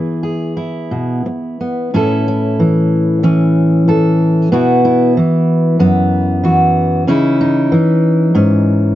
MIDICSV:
0, 0, Header, 1, 3, 480
1, 0, Start_track
1, 0, Tempo, 674916
1, 1380, Time_signature, 4, 2, 24, 8
1, 1846, Tempo, 639659
1, 6614, End_track
2, 0, Start_track
2, 0, Title_t, "Steel-string acoustic guitar"
2, 0, Program_c, 0, 25
2, 0, Note_on_c, 0, 52, 43
2, 0, Note_on_c, 0, 59, 48
2, 0, Note_on_c, 0, 64, 46
2, 0, Note_on_c, 0, 68, 56
2, 156, Note_off_c, 0, 68, 0
2, 165, Note_on_c, 0, 68, 36
2, 395, Note_off_c, 0, 64, 0
2, 404, Note_on_c, 0, 64, 51
2, 649, Note_on_c, 0, 47, 51
2, 886, Note_off_c, 0, 47, 0
2, 1134, Note_off_c, 0, 59, 0
2, 1143, Note_on_c, 0, 59, 34
2, 1351, Note_off_c, 0, 64, 0
2, 1352, Note_off_c, 0, 59, 0
2, 1352, Note_off_c, 0, 68, 0
2, 1378, Note_on_c, 0, 45, 66
2, 1382, Note_on_c, 0, 61, 50
2, 1385, Note_on_c, 0, 64, 53
2, 1394, Note_on_c, 0, 69, 59
2, 1618, Note_off_c, 0, 64, 0
2, 1621, Note_on_c, 0, 64, 52
2, 1838, Note_off_c, 0, 52, 0
2, 1846, Note_on_c, 0, 52, 50
2, 2320, Note_off_c, 0, 61, 0
2, 2324, Note_off_c, 0, 52, 0
2, 2324, Note_on_c, 0, 52, 66
2, 2329, Note_on_c, 0, 61, 56
2, 2806, Note_off_c, 0, 69, 0
2, 2808, Note_off_c, 0, 52, 0
2, 2808, Note_on_c, 0, 52, 47
2, 2815, Note_on_c, 0, 69, 55
2, 3266, Note_off_c, 0, 45, 0
2, 3266, Note_off_c, 0, 61, 0
2, 3267, Note_off_c, 0, 69, 0
2, 3289, Note_on_c, 0, 47, 61
2, 3293, Note_on_c, 0, 59, 57
2, 3296, Note_off_c, 0, 64, 0
2, 3299, Note_on_c, 0, 64, 58
2, 3303, Note_on_c, 0, 66, 58
2, 3534, Note_off_c, 0, 64, 0
2, 3537, Note_on_c, 0, 64, 56
2, 3771, Note_off_c, 0, 47, 0
2, 3776, Note_off_c, 0, 52, 0
2, 3779, Note_on_c, 0, 52, 59
2, 4242, Note_off_c, 0, 59, 0
2, 4247, Note_on_c, 0, 42, 67
2, 4251, Note_on_c, 0, 59, 61
2, 4724, Note_off_c, 0, 52, 0
2, 4726, Note_off_c, 0, 66, 0
2, 4727, Note_on_c, 0, 52, 57
2, 4735, Note_on_c, 0, 66, 59
2, 5182, Note_off_c, 0, 42, 0
2, 5184, Note_off_c, 0, 59, 0
2, 5186, Note_off_c, 0, 66, 0
2, 5207, Note_on_c, 0, 49, 68
2, 5212, Note_on_c, 0, 61, 61
2, 5214, Note_off_c, 0, 64, 0
2, 5217, Note_on_c, 0, 63, 59
2, 5224, Note_on_c, 0, 64, 68
2, 5447, Note_off_c, 0, 63, 0
2, 5456, Note_on_c, 0, 63, 61
2, 5681, Note_off_c, 0, 52, 0
2, 5687, Note_off_c, 0, 49, 0
2, 5690, Note_on_c, 0, 52, 59
2, 6157, Note_off_c, 0, 61, 0
2, 6161, Note_on_c, 0, 44, 64
2, 6166, Note_on_c, 0, 61, 54
2, 6614, Note_off_c, 0, 44, 0
2, 6614, Note_off_c, 0, 52, 0
2, 6614, Note_off_c, 0, 61, 0
2, 6614, Note_off_c, 0, 63, 0
2, 6614, Note_off_c, 0, 64, 0
2, 6614, End_track
3, 0, Start_track
3, 0, Title_t, "Muted steel-string acoustic guitar strokes"
3, 893, Note_on_c, 9, 29, 47
3, 964, Note_off_c, 9, 29, 0
3, 6614, End_track
0, 0, End_of_file